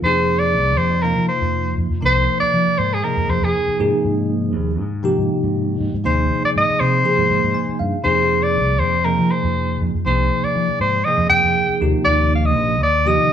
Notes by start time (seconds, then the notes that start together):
0.02 F2 C3 F3 A#3 D#4 G#4 C5
0.39 D5
0.53 C2
0.77 F2 C5
1.02 C3 F3 A#3 D#4 F4 A#4
1.16 F3
1.28 C5
1.41 F2
1.78 F2
1.90 F2
2.01 C2 C3 F3 A#3 D#4 A#4
2.06 C5
2.40 D5, muted fingered electric bass stroke
2.54 F3
2.67 muted fingered electric bass stroke
2.78 G#2 C5
2.94 G#4
3.02 C3 F3 A#3 D#4 G#4 A#4
3.17 F2
3.29 F2 C5
3.42 F2 G#4
3.68 muted fingered electric bass stroke
3.78 G#2 C3 F3 A#3 D#4 G#4
4.05 G#2
4.55 D#2
4.81 G#2
5.03 C3 F3 A#3 D#4 G4
5.18 G#2
5.44 G#2
5.81 G#2
5.94 G#2
6.04 D#2 C3 F3 A#3 D#4 G#4 C5
6.44 D5, muted fingered electric bass stroke
6.56 G#2 D#5
6.69 muted fingered electric bass stroke
6.80 C3 C5
7.04 C3 F3 A#3 D#4 G#4
7.18 G#2
7.30 G#2
7.44 G#2
7.54 G#5
7.68 muted fingered electric bass stroke
7.79 G2 F5
8.03 F2 C3 F3 A#3 D#4 G#4 C5
8.43 D5
8.56 C2
8.79 F2 C5
9.04 C3 F3 A#3 D#4 G#4 A#4
9.19 F3
9.31 C5
9.44 F2
9.81 F2
9.94 F2
10.05 C2 C3 F3 A#3 D#4 G#4 C5
10.44 D5, muted fingered electric bass stroke
10.55 F3
10.68 muted fingered electric bass stroke
10.80 G#2 C5
11.05 C3 F3 A#3 D#4 G#4 D#5
11.18 F2
11.29 F2 G5
11.44 F2
11.68 muted fingered electric bass stroke
11.80 D#2 C3 F3 A#3 D#4 G4
12.05 D#2 D5
12.36 F5
12.46 D#5
12.55 A#1
12.81 D#2 D5
13.05 C3 F3 A#3 D#4 G4 D#5
13.18 D#3